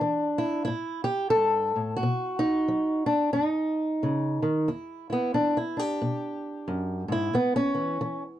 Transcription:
Already playing: D4
0.01 E3
0.38 E4
0.65 A2 E4
1.04 G4
1.30 A4
1.35 G2
1.76 A2
1.96 F#4
2.03 B2
2.39 D#4
2.68 F#3
3.06 D4
3.33 F#2 D#4
4.03 C#3
4.42 D#3
4.68 E2 E4
5.10 B3 E4
5.34 E3 D4
5.57 E4
5.77 D4 G4
6.02 B2
6.68 F#2
7.08 G#2 E4
7.33 A2 B3
7.56 C#4
7.74 E3
8.01 E3

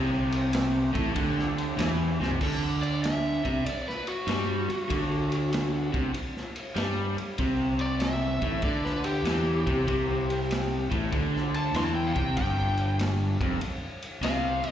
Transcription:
Already playing: C2 C3 G#3 C#4 G#4
0.08 G3 C4 G4
0.32 ride
0.53 snare, ride
0.93 A1 A2, kick, ride
1.15 D2 D3, kick, ride
1.39 snare
1.58 ride
1.78 E2 E3, snare, ride
2.20 C2 C3, snare
2.31 floor tom
2.41 D2 D3, kick, crash
2.83 D5, ride
3.03 E5, snare, ride
3.44 C2 C3, kick, ride
3.66 D5, muted overdriven electric guitar stroke, muted fingered electric bass stroke, ride
3.88 B4, snare
4.07 F#4, ride
4.27 G2 G3, snare, ride
4.69 muted overdriven electric guitar stroke, muted fingered electric bass stroke, ride
4.89 D2 D3, kick, ride
5.32 ride
5.53 snare, ride
5.93 C2 C3, kick, ride
6.14 muted fingered electric bass stroke, muted overdriven electric guitar stroke, ride
6.37 snare
6.56 ride
6.76 G2 G3, snare, ride
7.17 muted fingered electric bass stroke, muted overdriven electric guitar stroke, ride
7.38 C2 C3, kick, ride
7.79 D5, ride
8.00 E5, snare, ride
8.42 A1 A2, kick, ride
8.62 D2 D3 D5, kick, ride
8.85 B4, snare
9.04 G4, ride
9.23 E2 E3, snare, ride
9.67 C2 C3, kick, ride
9.87 C2 C3, kick, ride
10.30 ride
10.51 snare, ride
10.90 A1 A2, kick, ride
11.12 D2 D3, kick, ride
11.36 snare
11.54 A5, ride
11.74 E2 E3 C6, snare, ride
11.86 A5
11.95 G5
12.07 F5
12.15 C2 C3 G5, kick, ride
12.37 G1 G2 G5, kick, ride
12.77 ride
12.99 snare, ride
13.40 F1 F2, kick, ride
13.61 muted fingered electric bass stroke, muted overdriven electric guitar stroke, ride
14.02 ride
14.21 C2 C3 F5, snare, ride
14.62 muted fingered electric bass stroke, muted overdriven electric guitar stroke, ride
14.69 D#5

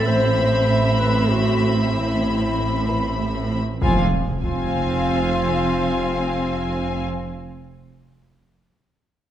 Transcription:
Already playing: A1 A2 C4 A4 E5 B5
0.07 A2 C5
0.38 A2
0.70 A2
1.00 A3 B4
1.31 A2 F#4
1.63 A3
1.93 A2 E4
2.25 A2
2.56 A2
2.88 A2 B4 B5
3.20 A2
3.51 A3
3.81 F1 F2 C4 F4 F5 G#5, taiko, impact
4.42 F1 F2 C4 F4 F5 G#5, taiko

